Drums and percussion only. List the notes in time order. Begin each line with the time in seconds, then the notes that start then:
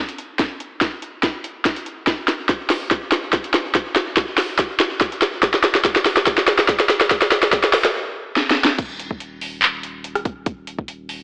0.09 closed hi-hat
0.18 closed hi-hat
0.39 kick, snare, closed hi-hat
0.60 closed hi-hat
0.81 kick, snare, closed hi-hat
1.02 closed hi-hat
1.23 kick, snare, closed hi-hat
1.44 closed hi-hat
1.65 kick, snare, closed hi-hat
1.76 closed hi-hat
1.86 closed hi-hat
2.07 kick, snare, closed hi-hat
2.28 snare, closed hi-hat
2.49 kick, snare, closed hi-hat
2.70 snare, open hi-hat
2.91 kick, snare, closed hi-hat
3.12 snare, closed hi-hat
3.33 kick, snare, closed hi-hat
3.44 closed hi-hat
3.54 snare, closed hi-hat
3.75 kick, snare, closed hi-hat
3.96 snare, closed hi-hat
4.17 kick, snare, closed hi-hat
4.38 snare, open hi-hat
4.59 kick, snare, closed hi-hat
4.80 snare, closed hi-hat
5.01 kick, snare, closed hi-hat
5.12 closed hi-hat
5.22 snare, closed hi-hat
5.43 kick, snare, closed hi-hat
5.54 snare
5.64 snare, closed hi-hat
5.75 snare
5.85 kick, snare, closed hi-hat
5.96 snare
6.06 snare, open hi-hat
6.17 snare
6.27 kick, snare, closed hi-hat
6.38 snare
6.48 snare, closed hi-hat
6.59 snare
6.69 kick, snare, closed hi-hat
6.80 snare, closed hi-hat
6.89 snare, closed hi-hat
7.01 snare
7.11 kick, snare, closed hi-hat
7.22 snare
7.32 snare, closed hi-hat
7.43 snare
7.53 kick, snare, closed hi-hat
7.64 snare
7.73 snare, open hi-hat
7.85 snare
8.36 snare
8.51 snare
8.65 snare
8.78 kick, closed hi-hat, crash
8.99 closed hi-hat
9.11 kick
9.20 closed hi-hat
9.41 open hi-hat
9.62 clap, closed hi-hat
9.83 closed hi-hat
10.04 closed hi-hat
10.15 cross-stick, closed hi-hat
10.25 kick, closed hi-hat
10.46 kick, closed hi-hat
10.67 closed hi-hat
10.79 kick
10.88 closed hi-hat
11.09 open hi-hat